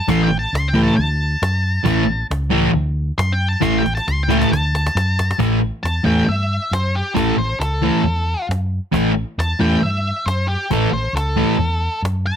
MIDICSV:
0, 0, Header, 1, 5, 480
1, 0, Start_track
1, 0, Tempo, 442152
1, 98, Time_signature, 4, 2, 24, 8
1, 13422, End_track
2, 0, Start_track
2, 0, Title_t, "Lead electric guitar"
2, 0, Program_c, 0, 29
2, 100, Note_on_c, 0, 84, 110
2, 254, Note_off_c, 0, 84, 0
2, 257, Note_on_c, 0, 79, 112
2, 413, Note_off_c, 0, 79, 0
2, 423, Note_on_c, 0, 81, 88
2, 577, Note_off_c, 0, 81, 0
2, 595, Note_on_c, 0, 84, 106
2, 742, Note_on_c, 0, 79, 98
2, 743, Note_off_c, 0, 84, 0
2, 896, Note_off_c, 0, 79, 0
2, 907, Note_on_c, 0, 81, 99
2, 1039, Note_off_c, 0, 81, 0
2, 1052, Note_on_c, 0, 81, 90
2, 2456, Note_off_c, 0, 81, 0
2, 3455, Note_on_c, 0, 84, 104
2, 3609, Note_on_c, 0, 79, 98
2, 3615, Note_off_c, 0, 84, 0
2, 3784, Note_off_c, 0, 79, 0
2, 3784, Note_on_c, 0, 81, 90
2, 3930, Note_on_c, 0, 84, 105
2, 3940, Note_off_c, 0, 81, 0
2, 4093, Note_off_c, 0, 84, 0
2, 4107, Note_on_c, 0, 79, 112
2, 4262, Note_off_c, 0, 79, 0
2, 4287, Note_on_c, 0, 81, 82
2, 4430, Note_on_c, 0, 84, 117
2, 4432, Note_off_c, 0, 81, 0
2, 4583, Note_off_c, 0, 84, 0
2, 4593, Note_on_c, 0, 79, 99
2, 4745, Note_off_c, 0, 79, 0
2, 4768, Note_on_c, 0, 81, 97
2, 4900, Note_off_c, 0, 81, 0
2, 4913, Note_on_c, 0, 81, 95
2, 5842, Note_off_c, 0, 81, 0
2, 6332, Note_on_c, 0, 81, 90
2, 6568, Note_off_c, 0, 81, 0
2, 6572, Note_on_c, 0, 79, 92
2, 6813, Note_off_c, 0, 79, 0
2, 6824, Note_on_c, 0, 76, 76
2, 7292, Note_off_c, 0, 76, 0
2, 7318, Note_on_c, 0, 72, 83
2, 7546, Note_off_c, 0, 72, 0
2, 7549, Note_on_c, 0, 67, 78
2, 7757, Note_on_c, 0, 69, 100
2, 7782, Note_off_c, 0, 67, 0
2, 8005, Note_off_c, 0, 69, 0
2, 8016, Note_on_c, 0, 72, 78
2, 8247, Note_off_c, 0, 72, 0
2, 8252, Note_on_c, 0, 69, 96
2, 9191, Note_off_c, 0, 69, 0
2, 10197, Note_on_c, 0, 81, 97
2, 10424, Note_off_c, 0, 81, 0
2, 10429, Note_on_c, 0, 79, 99
2, 10660, Note_off_c, 0, 79, 0
2, 10671, Note_on_c, 0, 76, 91
2, 11132, Note_off_c, 0, 76, 0
2, 11135, Note_on_c, 0, 72, 81
2, 11371, Note_off_c, 0, 72, 0
2, 11377, Note_on_c, 0, 67, 79
2, 11612, Note_off_c, 0, 67, 0
2, 11627, Note_on_c, 0, 69, 88
2, 11856, Note_off_c, 0, 69, 0
2, 11870, Note_on_c, 0, 72, 85
2, 12097, Note_off_c, 0, 72, 0
2, 12113, Note_on_c, 0, 69, 102
2, 13033, Note_off_c, 0, 69, 0
2, 13320, Note_on_c, 0, 81, 97
2, 13422, Note_off_c, 0, 81, 0
2, 13422, End_track
3, 0, Start_track
3, 0, Title_t, "Distorted electric guitar"
3, 0, Program_c, 1, 30
3, 88, Note_on_c, 1, 45, 83
3, 99, Note_on_c, 1, 52, 98
3, 104, Note_on_c, 1, 57, 84
3, 285, Note_off_c, 1, 45, 0
3, 291, Note_off_c, 1, 52, 0
3, 293, Note_off_c, 1, 57, 0
3, 802, Note_on_c, 1, 45, 99
3, 809, Note_on_c, 1, 52, 90
3, 816, Note_on_c, 1, 57, 105
3, 1003, Note_off_c, 1, 45, 0
3, 1007, Note_off_c, 1, 52, 0
3, 1010, Note_off_c, 1, 57, 0
3, 2007, Note_on_c, 1, 45, 88
3, 2015, Note_on_c, 1, 52, 84
3, 2029, Note_on_c, 1, 57, 98
3, 2207, Note_off_c, 1, 45, 0
3, 2211, Note_off_c, 1, 52, 0
3, 2218, Note_off_c, 1, 57, 0
3, 2721, Note_on_c, 1, 45, 100
3, 2733, Note_on_c, 1, 57, 116
3, 2735, Note_on_c, 1, 52, 104
3, 2925, Note_off_c, 1, 45, 0
3, 2931, Note_off_c, 1, 57, 0
3, 2932, Note_off_c, 1, 52, 0
3, 3917, Note_on_c, 1, 45, 90
3, 3924, Note_on_c, 1, 52, 95
3, 3930, Note_on_c, 1, 57, 89
3, 4123, Note_off_c, 1, 45, 0
3, 4127, Note_off_c, 1, 52, 0
3, 4130, Note_off_c, 1, 57, 0
3, 4653, Note_on_c, 1, 45, 97
3, 4663, Note_on_c, 1, 52, 103
3, 4678, Note_on_c, 1, 57, 111
3, 4852, Note_off_c, 1, 45, 0
3, 4857, Note_off_c, 1, 52, 0
3, 4864, Note_off_c, 1, 57, 0
3, 5850, Note_on_c, 1, 45, 89
3, 5861, Note_on_c, 1, 52, 82
3, 5864, Note_on_c, 1, 57, 93
3, 6051, Note_off_c, 1, 45, 0
3, 6056, Note_off_c, 1, 52, 0
3, 6058, Note_off_c, 1, 57, 0
3, 6556, Note_on_c, 1, 45, 85
3, 6567, Note_on_c, 1, 52, 97
3, 6574, Note_on_c, 1, 57, 95
3, 6764, Note_off_c, 1, 45, 0
3, 6770, Note_off_c, 1, 52, 0
3, 6773, Note_off_c, 1, 57, 0
3, 7761, Note_on_c, 1, 45, 83
3, 7777, Note_on_c, 1, 52, 91
3, 7785, Note_on_c, 1, 57, 96
3, 7967, Note_off_c, 1, 45, 0
3, 7975, Note_off_c, 1, 52, 0
3, 7979, Note_off_c, 1, 57, 0
3, 8488, Note_on_c, 1, 45, 99
3, 8494, Note_on_c, 1, 52, 105
3, 8506, Note_on_c, 1, 57, 100
3, 8690, Note_off_c, 1, 45, 0
3, 8694, Note_off_c, 1, 52, 0
3, 8699, Note_off_c, 1, 57, 0
3, 9684, Note_on_c, 1, 45, 73
3, 9690, Note_on_c, 1, 52, 84
3, 9705, Note_on_c, 1, 57, 84
3, 9887, Note_off_c, 1, 45, 0
3, 9890, Note_off_c, 1, 52, 0
3, 9898, Note_off_c, 1, 57, 0
3, 10417, Note_on_c, 1, 45, 87
3, 10427, Note_on_c, 1, 52, 105
3, 10442, Note_on_c, 1, 57, 98
3, 10613, Note_off_c, 1, 45, 0
3, 10618, Note_off_c, 1, 52, 0
3, 10626, Note_off_c, 1, 57, 0
3, 11624, Note_on_c, 1, 45, 76
3, 11631, Note_on_c, 1, 52, 84
3, 11641, Note_on_c, 1, 57, 92
3, 11814, Note_off_c, 1, 45, 0
3, 11818, Note_off_c, 1, 52, 0
3, 11822, Note_off_c, 1, 57, 0
3, 12338, Note_on_c, 1, 45, 93
3, 12348, Note_on_c, 1, 57, 101
3, 12350, Note_on_c, 1, 52, 93
3, 12529, Note_off_c, 1, 45, 0
3, 12535, Note_off_c, 1, 52, 0
3, 12535, Note_off_c, 1, 57, 0
3, 13422, End_track
4, 0, Start_track
4, 0, Title_t, "Fingered electric bass"
4, 0, Program_c, 2, 33
4, 90, Note_on_c, 2, 33, 92
4, 486, Note_off_c, 2, 33, 0
4, 573, Note_on_c, 2, 37, 81
4, 969, Note_off_c, 2, 37, 0
4, 1070, Note_on_c, 2, 38, 97
4, 1459, Note_off_c, 2, 38, 0
4, 1540, Note_on_c, 2, 42, 96
4, 1934, Note_off_c, 2, 42, 0
4, 2018, Note_on_c, 2, 33, 91
4, 2412, Note_off_c, 2, 33, 0
4, 2501, Note_on_c, 2, 37, 90
4, 2895, Note_off_c, 2, 37, 0
4, 2973, Note_on_c, 2, 38, 86
4, 3370, Note_off_c, 2, 38, 0
4, 3453, Note_on_c, 2, 42, 97
4, 3851, Note_off_c, 2, 42, 0
4, 3930, Note_on_c, 2, 33, 93
4, 4329, Note_off_c, 2, 33, 0
4, 4426, Note_on_c, 2, 37, 91
4, 4818, Note_off_c, 2, 37, 0
4, 4904, Note_on_c, 2, 38, 95
4, 5297, Note_off_c, 2, 38, 0
4, 5375, Note_on_c, 2, 42, 95
4, 5773, Note_off_c, 2, 42, 0
4, 5866, Note_on_c, 2, 33, 95
4, 6184, Note_off_c, 2, 33, 0
4, 6339, Note_on_c, 2, 40, 83
4, 6501, Note_off_c, 2, 40, 0
4, 6574, Note_on_c, 2, 40, 80
4, 6737, Note_off_c, 2, 40, 0
4, 6820, Note_on_c, 2, 43, 95
4, 7140, Note_off_c, 2, 43, 0
4, 7288, Note_on_c, 2, 42, 100
4, 7612, Note_off_c, 2, 42, 0
4, 7775, Note_on_c, 2, 33, 91
4, 7938, Note_off_c, 2, 33, 0
4, 7999, Note_on_c, 2, 33, 84
4, 8168, Note_off_c, 2, 33, 0
4, 8243, Note_on_c, 2, 37, 74
4, 8568, Note_off_c, 2, 37, 0
4, 8728, Note_on_c, 2, 40, 92
4, 9051, Note_off_c, 2, 40, 0
4, 9215, Note_on_c, 2, 42, 95
4, 9536, Note_off_c, 2, 42, 0
4, 9702, Note_on_c, 2, 33, 100
4, 10020, Note_off_c, 2, 33, 0
4, 10181, Note_on_c, 2, 40, 77
4, 10341, Note_off_c, 2, 40, 0
4, 10432, Note_on_c, 2, 40, 85
4, 10588, Note_off_c, 2, 40, 0
4, 10661, Note_on_c, 2, 43, 85
4, 10978, Note_off_c, 2, 43, 0
4, 11141, Note_on_c, 2, 42, 94
4, 11457, Note_off_c, 2, 42, 0
4, 11622, Note_on_c, 2, 33, 89
4, 11780, Note_off_c, 2, 33, 0
4, 11852, Note_on_c, 2, 33, 82
4, 12013, Note_off_c, 2, 33, 0
4, 12083, Note_on_c, 2, 37, 88
4, 12404, Note_off_c, 2, 37, 0
4, 12572, Note_on_c, 2, 40, 94
4, 12889, Note_off_c, 2, 40, 0
4, 13054, Note_on_c, 2, 42, 89
4, 13369, Note_off_c, 2, 42, 0
4, 13422, End_track
5, 0, Start_track
5, 0, Title_t, "Cajon"
5, 92, Note_on_c, 9, 36, 109
5, 200, Note_off_c, 9, 36, 0
5, 600, Note_on_c, 9, 38, 105
5, 708, Note_off_c, 9, 38, 0
5, 1549, Note_on_c, 9, 38, 117
5, 1658, Note_off_c, 9, 38, 0
5, 2018, Note_on_c, 9, 36, 111
5, 2126, Note_off_c, 9, 36, 0
5, 2511, Note_on_c, 9, 38, 114
5, 2620, Note_off_c, 9, 38, 0
5, 2632, Note_on_c, 9, 38, 30
5, 2741, Note_off_c, 9, 38, 0
5, 3465, Note_on_c, 9, 38, 117
5, 3573, Note_off_c, 9, 38, 0
5, 3828, Note_on_c, 9, 38, 35
5, 3934, Note_on_c, 9, 36, 111
5, 3936, Note_off_c, 9, 38, 0
5, 3942, Note_on_c, 9, 38, 64
5, 4042, Note_off_c, 9, 36, 0
5, 4051, Note_off_c, 9, 38, 0
5, 4189, Note_on_c, 9, 38, 67
5, 4297, Note_off_c, 9, 38, 0
5, 4311, Note_on_c, 9, 38, 61
5, 4420, Note_off_c, 9, 38, 0
5, 4428, Note_on_c, 9, 38, 74
5, 4537, Note_off_c, 9, 38, 0
5, 4674, Note_on_c, 9, 38, 83
5, 4782, Note_off_c, 9, 38, 0
5, 4793, Note_on_c, 9, 38, 73
5, 4902, Note_off_c, 9, 38, 0
5, 4922, Note_on_c, 9, 38, 89
5, 5031, Note_off_c, 9, 38, 0
5, 5156, Note_on_c, 9, 38, 88
5, 5265, Note_off_c, 9, 38, 0
5, 5281, Note_on_c, 9, 38, 90
5, 5390, Note_off_c, 9, 38, 0
5, 5396, Note_on_c, 9, 38, 98
5, 5505, Note_off_c, 9, 38, 0
5, 5636, Note_on_c, 9, 38, 104
5, 5744, Note_off_c, 9, 38, 0
5, 5761, Note_on_c, 9, 38, 91
5, 5863, Note_on_c, 9, 36, 100
5, 5870, Note_off_c, 9, 38, 0
5, 5972, Note_off_c, 9, 36, 0
5, 6355, Note_on_c, 9, 38, 101
5, 6464, Note_off_c, 9, 38, 0
5, 7310, Note_on_c, 9, 38, 111
5, 7418, Note_off_c, 9, 38, 0
5, 7779, Note_on_c, 9, 36, 110
5, 7888, Note_off_c, 9, 36, 0
5, 8266, Note_on_c, 9, 38, 110
5, 8375, Note_off_c, 9, 38, 0
5, 9240, Note_on_c, 9, 38, 105
5, 9348, Note_off_c, 9, 38, 0
5, 9704, Note_on_c, 9, 36, 102
5, 9812, Note_off_c, 9, 36, 0
5, 10203, Note_on_c, 9, 38, 102
5, 10312, Note_off_c, 9, 38, 0
5, 11158, Note_on_c, 9, 38, 102
5, 11267, Note_off_c, 9, 38, 0
5, 11625, Note_on_c, 9, 36, 103
5, 11734, Note_off_c, 9, 36, 0
5, 12125, Note_on_c, 9, 38, 113
5, 12233, Note_off_c, 9, 38, 0
5, 13082, Note_on_c, 9, 38, 105
5, 13191, Note_off_c, 9, 38, 0
5, 13422, End_track
0, 0, End_of_file